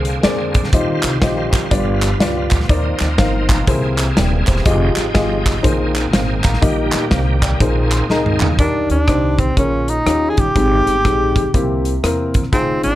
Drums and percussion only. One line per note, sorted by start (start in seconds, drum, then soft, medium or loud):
0.05 closed hi-hat medium
0.23 snare loud
0.23 closed hi-hat medium
0.54 kick medium
0.54 closed hi-hat medium
0.64 snare soft
0.73 kick loud
0.73 closed hi-hat loud
1.03 clap loud
1.03 closed hi-hat medium
1.22 kick medium
1.22 snare loud
1.22 closed hi-hat medium
1.53 kick medium
1.53 clap loud
1.53 closed hi-hat medium
1.71 kick loud
1.71 closed hi-hat medium
2.02 clap medium
2.02 closed hi-hat medium
2.20 snare loud
2.20 closed hi-hat medium
2.51 kick medium
2.51 clap medium
2.51 closed hi-hat medium
2.60 snare soft
2.69 kick loud
2.69 closed hi-hat loud
2.99 snare soft
2.99 clap loud
2.99 closed hi-hat medium
3.18 kick medium
3.18 snare loud
3.18 closed hi-hat medium
3.49 kick medium
3.49 clap loud
3.49 closed hi-hat medium
3.68 kick loud
3.68 closed hi-hat medium
3.98 clap medium
3.98 closed hi-hat medium
4.17 snare loud
4.17 closed hi-hat medium
4.47 kick medium
4.47 clap medium
4.47 closed hi-hat medium
4.56 snare soft
4.66 kick loud
4.66 closed hi-hat loud
4.96 snare soft
4.96 clap medium
4.96 closed hi-hat medium
5.15 kick medium
5.15 snare loud
5.15 closed hi-hat medium
5.46 kick medium
5.46 clap loud
5.46 closed hi-hat medium
5.64 kick loud
5.64 closed hi-hat loud
5.95 clap loud
5.95 closed hi-hat medium
6.13 snare loud
6.13 closed hi-hat medium
6.44 kick medium
6.44 clap medium
6.44 closed hi-hat medium
6.53 snare soft
6.62 kick loud
6.62 closed hi-hat loud
6.92 snare soft
6.92 clap loud
6.92 closed hi-hat medium
7.11 kick medium
7.11 snare loud
7.11 closed hi-hat medium
7.42 kick medium
7.42 clap loud
7.42 closed hi-hat medium
7.60 kick loud
7.60 closed hi-hat medium
7.91 clap loud
7.91 closed hi-hat medium
8.10 snare medium
8.26 mid tom medium
8.40 clap medium
8.40 floor tom loud
8.59 kick loud
8.59 closed hi-hat medium
8.90 closed hi-hat medium
9.08 kick medium
9.08 cross-stick loud
9.08 closed hi-hat medium
9.39 kick medium
9.39 closed hi-hat medium
9.57 kick loud
9.57 closed hi-hat medium
9.88 closed hi-hat medium
10.07 cross-stick loud
10.07 closed hi-hat medium
10.37 kick medium
10.37 closed hi-hat medium
10.56 kick loud
10.56 closed hi-hat loud
10.87 cross-stick soft
10.87 closed hi-hat medium
11.05 kick medium
11.05 cross-stick loud
11.05 closed hi-hat medium
11.36 kick medium
11.36 closed hi-hat medium
11.54 kick loud
11.54 closed hi-hat medium
11.85 closed hi-hat medium
12.04 cross-stick loud
12.04 closed hi-hat medium
12.34 kick medium
12.34 closed hi-hat medium
12.43 cross-stick soft
12.53 kick loud
12.53 closed hi-hat medium
12.83 closed hi-hat medium